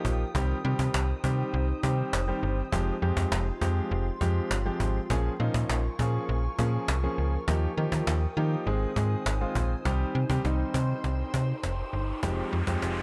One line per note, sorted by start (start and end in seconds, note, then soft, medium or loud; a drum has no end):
0.00 0.22 F3 medium
0.00 0.22 A#3 medium
0.00 0.22 D#4 medium
0.00 0.31 F4 medium
0.00 0.22 G4 medium
0.00 0.31 A#4 medium
0.00 5.06 G5 medium
0.00 2.68 D#6 medium
0.05 0.24 A#1 medium
0.05 cajon bass medium
0.35 0.54 C2 loud
0.35 0.56 D#3 medium
0.35 0.56 G3 medium
0.35 0.56 C4 medium
0.35 2.70 D#4 medium
0.35 0.56 G4 medium
0.35 2.70 C5 medium
0.35 cajon bass loud
0.64 0.74 C3 loud
0.64 1.06 D#3 medium
0.64 1.06 G3 medium
0.64 1.07 C4 medium
0.64 1.07 G4 medium
0.79 0.89 C3 loud
0.79 cajon bass medium
0.94 1.14 C2 loud
0.94 cajon slap loud
1.24 1.43 C3 medium
1.24 1.66 D#3 medium
1.24 1.66 G3 medium
1.24 1.66 C4 medium
1.24 1.66 G4 medium
1.24 cajon bass loud
1.54 1.73 C2 loud
1.83 2.03 C3 medium
1.83 2.15 D#3 medium
1.83 2.15 G3 medium
1.83 2.15 C4 medium
1.83 2.15 G4 medium
1.83 cajon bass medium
2.13 2.32 F1 medium
2.13 cajon slap loud
2.28 2.59 D#3 medium
2.28 2.59 G3 medium
2.28 2.59 C4 medium
2.28 2.60 G4 medium
2.43 2.62 G1 loud
2.72 2.92 F1 loud
2.72 2.93 F3 medium
2.72 5.08 G#3 medium
2.72 2.93 G#3 medium
2.72 2.94 C4 medium
2.72 8.62 F4 medium
2.72 2.94 G4 medium
2.72 5.08 C6 medium
2.72 cajon bass loud
3.02 3.12 F2 loud
3.02 3.44 F3 medium
3.02 3.44 G#3 medium
3.02 3.44 C4 medium
3.02 3.44 G4 medium
3.17 3.26 F2 medium
3.17 cajon bass loud
3.32 3.51 F1 loud
3.32 cajon slap loud
3.61 3.81 F2 loud
3.61 4.04 F3 medium
3.61 4.04 G#3 medium
3.61 4.04 C4 medium
3.61 4.04 G4 medium
3.61 cajon bass loud
3.91 4.11 F1 loud
4.21 4.40 F2 loud
4.21 4.52 F3 medium
4.21 4.52 G#3 medium
4.21 4.53 C4 medium
4.21 4.53 G4 loud
4.21 cajon bass medium
4.51 4.70 G1 medium
4.51 cajon slap loud
4.65 4.97 F3 medium
4.65 4.97 G#3 medium
4.65 4.97 C4 medium
4.65 4.97 G4 medium
4.80 4.99 G#1 loud
4.80 cajon bass medium
5.10 5.29 A#1 loud
5.10 5.31 F3 medium
5.10 5.31 A#3 medium
5.10 5.31 C#4 medium
5.10 5.31 G#4 medium
5.10 8.63 A#4 medium
5.10 7.45 G#5 medium
5.10 7.45 C#6 medium
5.10 cajon bass loud
5.40 5.49 A#2 loud
5.40 5.82 F3 medium
5.40 5.82 A#3 medium
5.40 5.82 C#4 medium
5.40 5.82 D#4 medium
5.54 5.64 A#2 loud
5.54 cajon bass medium
5.69 5.89 A#1 loud
5.69 cajon slap loud
5.99 6.18 A#2 loud
5.99 6.41 F3 medium
5.99 6.41 A#3 medium
5.99 6.41 C#4 medium
5.99 6.41 G#4 medium
5.99 cajon bass medium
6.29 6.48 A#1 loud
6.58 6.78 A#2 loud
6.58 6.90 F3 medium
6.58 6.90 A#3 medium
6.58 6.90 C#4 medium
6.58 6.90 G#4 medium
6.58 cajon bass medium
6.88 7.08 C2 medium
6.88 cajon slap loud
7.03 7.35 F3 medium
7.03 7.35 A#3 medium
7.03 7.35 C#4 medium
7.03 7.35 G#4 medium
7.18 7.37 C#2 medium
7.48 7.67 D#2 loud
7.48 7.69 F3 medium
7.48 7.69 A#3 medium
7.48 7.69 D#4 medium
7.48 7.69 G4 loud
7.48 8.65 G5 medium
7.48 9.83 D#6 medium
7.48 cajon bass loud
7.77 7.87 D#3 loud
7.77 8.19 F3 medium
7.77 8.19 A#3 medium
7.77 8.20 D#4 medium
7.77 8.20 G4 medium
7.92 8.02 D#3 medium
7.92 cajon bass medium
8.07 8.26 D#2 loud
8.07 cajon slap loud
8.37 8.56 D#3 loud
8.37 8.67 F3 medium
8.37 8.67 A#3 medium
8.37 8.67 D#4 medium
8.37 8.67 G4 medium
8.66 8.86 G#1 loud
8.66 8.90 D#3 medium
8.66 8.90 G#3 medium
8.66 8.90 C4 medium
8.66 9.84 D#4 medium
8.66 8.91 G#4 medium
8.66 9.84 C5 medium
8.66 9.84 G#5 medium
8.96 9.16 G#2 loud
8.96 9.28 D#3 medium
8.96 9.28 G#3 medium
8.96 9.28 C4 medium
8.96 9.28 G#4 medium
8.96 cajon bass medium
9.26 9.45 G#1 medium
9.26 cajon slap loud
9.41 9.72 D#3 medium
9.41 9.72 G#3 medium
9.41 9.72 C4 medium
9.41 9.73 F4 medium
9.55 9.75 A#1 loud
9.55 cajon bass medium
9.85 10.05 C2 loud
9.85 10.17 D#3 medium
9.85 10.17 G3 medium
9.85 10.17 C4 medium
9.85 12.21 D#4 medium
9.85 10.17 G4 medium
9.85 12.20 C5 medium
9.85 13.03 G5 medium
9.85 12.20 C6 medium
9.85 cajon bass loud
9.85 cajon slap soft
9.85 riser medium
10.15 10.25 C3 loud
10.30 10.39 C3 loud
10.30 10.40 D#3 medium
10.30 10.40 G3 medium
10.30 10.40 C4 medium
10.30 10.41 G4 medium
10.30 cajon bass medium
10.45 10.64 C2 loud
10.45 11.29 D#3 medium
10.45 11.29 G3 medium
10.45 11.29 C4 medium
10.45 11.29 D#4 medium
10.45 cajon slap medium
10.74 10.94 C3 loud
10.74 cajon bass medium
11.04 11.23 C2 loud
11.04 cajon slap medium
11.34 11.53 C3 medium
11.34 cajon bass medium
11.63 11.83 F1 medium
11.63 cajon slap medium
11.93 12.13 G1 medium
12.23 12.42 F1 loud
12.23 12.54 F3 medium
12.23 12.54 G#3 medium
12.23 13.03 G#3 medium
12.23 12.55 C4 medium
12.23 13.03 F4 medium
12.23 12.55 G4 medium
12.23 13.03 C6 medium
12.23 cajon bass loud
12.23 cajon slap medium
12.52 12.62 F2 loud
12.52 cajon slap soft
12.67 12.77 F2 medium
12.67 13.03 F3 medium
12.67 13.03 G#3 medium
12.67 13.03 C4 medium
12.67 13.03 G4 medium
12.67 cajon bass medium
12.82 13.02 F1 loud
12.82 cajon slap medium